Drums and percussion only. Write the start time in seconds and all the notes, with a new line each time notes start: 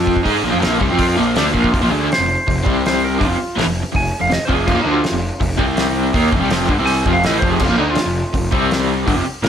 0.07 kick
0.17 kick
0.26 kick, open hi-hat
0.62 snare, open hi-hat
0.81 kick
0.99 kick, open hi-hat
1.36 snare, open hi-hat
1.55 kick
1.64 kick
1.74 kick, open hi-hat
2.12 snare, open hi-hat
2.48 kick, open hi-hat
2.66 kick
2.86 snare, open hi-hat
3.21 kick, open hi-hat
3.59 snare, open hi-hat
3.95 kick, open hi-hat
4.31 snare, open hi-hat
4.49 kick
4.68 kick, crash
5.04 snare, open hi-hat
5.41 kick, open hi-hat
5.59 kick
5.77 snare, open hi-hat
6.14 kick, open hi-hat
6.33 kick
6.50 snare, open hi-hat
6.69 kick
6.87 open hi-hat
7.06 kick
7.24 snare, open hi-hat
7.42 kick
7.59 kick, crash
7.95 snare, open hi-hat
8.34 kick, open hi-hat
8.52 kick
8.71 snare, open hi-hat
9.08 kick, open hi-hat
9.44 snare, open hi-hat